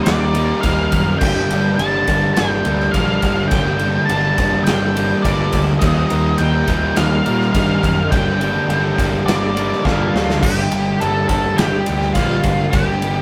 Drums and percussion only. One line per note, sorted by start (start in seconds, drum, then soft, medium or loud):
0.06 snare loud
0.06 ride loud
0.35 ride medium
0.63 kick medium
0.63 ride loud
0.92 kick medium
0.92 ride medium
1.21 kick loud
1.21 crash loud
1.51 ride medium
1.79 ride loud
2.07 kick medium
2.07 ride medium
2.36 snare loud
2.36 ride loud
2.65 ride medium
2.80 snare soft
2.94 kick medium
2.94 ride medium
3.22 kick medium
3.22 ride medium
3.51 kick loud
3.51 ride loud
3.79 ride medium
4.09 ride loud
4.38 kick medium
4.38 ride medium
4.67 snare loud
4.67 ride loud
4.97 ride medium
5.25 kick medium
5.25 ride loud
5.52 kick medium
5.52 ride medium
5.81 kick loud
5.81 ride loud
6.10 ride medium
6.38 ride loud
6.68 kick medium
6.68 ride medium
6.96 snare loud
6.96 ride loud
7.26 ride medium
7.41 snare soft
7.54 kick medium
7.54 ride loud
7.83 kick medium
7.83 ride medium
8.12 kick loud
8.12 ride loud
8.41 ride medium
8.70 ride loud
8.98 kick medium
8.98 ride medium
9.28 snare loud
9.28 ride loud
9.57 ride medium
9.72 snare soft
9.85 kick medium
9.85 snare medium
10.16 snare medium
10.30 snare loud
10.43 kick loud
10.43 crash loud
10.72 ride medium
11.01 ride loud
11.29 kick medium
11.29 ride medium
11.58 snare loud
11.58 ride loud
11.86 ride medium
12.02 snare soft
12.15 kick medium
12.15 ride loud
12.43 kick medium
12.43 ride medium
12.73 kick loud
12.73 ride loud
13.02 ride medium